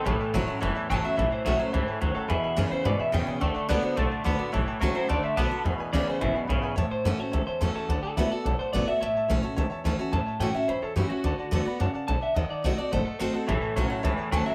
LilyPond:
<<
  \new Staff \with { instrumentName = "Upright piano" } { \time 4/4 \key a \major \tempo 4 = 215 <cis'' e'' a''>8 <cis'' e'' a''>8 <cis'' e'' a''>8 <cis'' e'' a''>8 <cis'' e'' a''>8 <cis'' e'' a''>8 <cis'' e'' a''>8 <cis'' e'' a''>8 | <cis'' e'' a''>8 <cis'' e'' a''>8 <cis'' e'' a''>8 <cis'' e'' a''>8 <cis'' e'' a''>8 <cis'' e'' a''>8 <cis'' e'' a''>8 <cis'' e'' a''>8 | <b' e'' gis''>8 <b' e'' gis''>8 <b' e'' gis''>8 <b' e'' gis''>8 <b' e'' gis''>8 <b' e'' gis''>8 <b' e'' gis''>8 <b' e'' gis''>8 | <d'' fis'' a''>8 <d'' fis'' a''>8 <d'' fis'' a''>8 <d'' fis'' a''>8 <d'' fis'' a''>8 <d'' fis'' a''>8 <d'' fis'' a''>8 <d'' fis'' a''>8 |
<cis'' e'' a''>8 <cis'' e'' a''>8 <cis'' e'' a''>8 <cis'' e'' a''>8 <d'' fis'' a''>8 <d'' fis'' a''>8 <d'' fis'' a''>8 <d'' fis'' a''>8 | <b' e'' gis''>8 <b' e'' gis''>8 <b' e'' gis''>8 <b' e'' gis''>8 <b' e'' gis''>8 <b' e'' gis''>8 <b' e'' gis''>8 <b' e'' gis''>8 | <cis'' e'' a''>8 <cis'' e'' a''>8 <cis'' e'' fis''>8 <cis'' e'' a''>8 <cis'' e'' a''>8 <cis'' e'' a''>8 <cis'' e'' a''>8 <cis'' e'' a''>8 | <d'' fis'' a''>8 <d'' fis'' a''>8 <d'' fis'' a''>8 <d'' fis'' a''>8 <d'' fis'' a''>8 <d'' fis'' a''>8 <d'' fis'' a''>8 <d'' fis'' a''>8 |
<cis'' e'' a''>8 <cis'' e'' a''>8 <cis'' e'' a''>8 <cis'' e'' a''>8 <cis'' e'' a''>8 <cis'' e'' a''>8 <cis'' e'' a''>8 <cis'' e'' a''>8 | <cis'' e'' a''>8 <cis'' e'' a''>8 <cis'' e'' a''>8 <cis'' e'' a''>8 <cis'' e'' b''>8 <cis'' e'' a''>8 <cis'' e'' b''>8 <cis'' e'' fis''>8 | <d'' fis'' a''>8 <d'' fis'' a''>8 <d'' fis'' a''>8 <d'' fis'' b''>8 <d'' fis'' a''>8 <d'' fis'' a''>8 <d'' fis'' a''>8 <d'' fis'' a''>8 | <dis'' fis'' a''>8 <dis'' fis'' a''>8 <dis'' fis'' a''>8 <dis'' fis'' a''>8 <dis'' fis'' a''>8 <dis'' fis'' a''>8 <dis'' fis'' a''>8 <dis'' fis'' a''>8 |
<cis'' e'' a''>8 <cis'' e'' a''>8 <cis'' e'' a''>8 <cis'' e'' a''>8 <cis'' e'' a''>8 <cis'' e'' a''>8 <cis'' e'' a''>8 <cis'' e'' a''>8 | }
  \new Staff \with { instrumentName = "Clean electric guitar" } { \time 4/4 \key a \major a'4 r2 a''8 e''8 | e''8 c''8 e''8 c''8 c''8 a'8 c''8 a'8 | e'4 r8 c''8 d''8 e''8 g''4 | r4 d''8 c''8 a'8 r4. |
r4. c''8 d''8 e''8 a''4 | r4 d''8 c''8 e'8 r4. | r8 c''8 a'8 c''8 a'8 c''8 a'8 a'8 | r8 a'8 e'8 a'4 c''8 d''8 e''8 |
e''4 r2. | a''4 g''8 e''8 c''8 a'8 g'8 fis'8~ | fis'2~ fis'8 r8 a''8 e''8 | dis''8 d''8 dis''8 d''8 bis'8 a'8 bis'8 a'8 |
a'4 r2 a''8 e''8 | }
  \new Staff \with { instrumentName = "Steel-string acoustic guitar" } { \time 4/4 \key a \major << { r4 <e a cis' fis'>8 <cis' fis'>8 r4 <e a cis' fis'>8 <cis' fis'>8 | r4 <e a cis' fis'>8 cis'8 r2 | r4 <e gis cis' e'>8 <cis' e'>8 r4 <e gis cis' e'>8 <cis' e'>8 | r4 <d a b fis'>8 <b fis'>8 r4 <d a b fis'>8 <b fis'>8 |
r4 <e a cis' fis'>8 <cis' fis'>8 r4 <d a b fis'>8 <b fis'>8 | r4 <e gis cis' e'>8 <cis' e'>8 r2 | r4 <e a cis' fis'>8 <cis' fis'>8 r4 <e a cis' fis'>4 | r4 <d a b fis'>8 <b fis'>8 r4 <d a b fis'>8 <b fis'>8 |
r4 <e a cis' fis'>8 <cis' fis'>8 r4 <e a cis' fis'>8 <cis' fis'>8 | r4 <e a cis' fis'>8 <cis' fis'>8 r4 <e a cis' fis'>8 <cis' fis'>8 | r4 <d a b fis'>8 <b fis'>8 r2 | r4 <dis a bis fis'>8 <bis fis'>8 r4 <dis a bis fis'>8 <bis fis'>8 |
r4 <e a cis' fis'>8 <cis' fis'>8 r4 <e a cis' fis'>8 <cis' fis'>8 | } \\ { a,2 e,2 | a,2 gis,4 fis,4 | e,2 b,2 | d2 a,2 |
a,2 d2 | e,2 fis,4 gis,4 | a,2 e,2 | d2 a,2 |
a,2 e,2 | a,2 e,2 | d2 cis4 d4 | dis2 a2 |
a,2 e,2 | } >> }
  \new Staff \with { instrumentName = "Clean electric guitar" } { \clef bass \time 4/4 \key a \major <a, e>4 <a, fis>4 <a, e>4 <a, fis>4 | <a, e>4 <a, fis>4 <a, e>4 <a, fis>4 | <e, b,>4 <e, cis>4 <e, b,>4 <e, cis>4 | <d a>4 <d b>4 <d a>4 <d b>4 |
<a, e>4 <a, fis>4 <d a>4 <d b>4 | <e, b,>4 <e, cis>4 <e, b,>4 <e, cis>4 | r1 | r1 |
r1 | r1 | r1 | r1 |
<a, e>4 <a, fis>4 <a, e>4 <a, fis>4 | }
  \new Staff \with { instrumentName = "Upright bass" } { \clef bass \time 4/4 \key a \major a,,8 r8 gis,,8 r8 fis,,8 r8 gis,,8 r8 | a,,8 r8 b,,8 r8 cis,8 r8 d,8 r8 | e,8 r8 fis,8 r8 gis,8 r8 e,8 r8 | d,8 r8 cis,8 r8 b,,8 r8 d,8 r8 |
a,,8 r8 cis,8 r8 d,8 r8 b,,8 r8 | e,8 r8 cis,8 r8 gis,,8 r8 b,,8 r8 | e,8 r8 fis,8 r8 cis,8 r8 e,8 r8 | d,8 r8 cis,8 r8 b,,8 r8 gis,,8 r8 |
a,,8 r8 b,,8 r8 cis,8 r8 d,8 r8 | e,8 r8 a,8 r8 gis,8 r8 fis,8 r8 | d,8 r8 e,8 r8 fis,8 r8 b,,8 r8 | dis,8 r8 bis,,8 r8 gis,,8 r8 fis,,8 r8 |
a,,8 r8 b,,8 r8 cis,8 r8 d,8 r8 | }
>>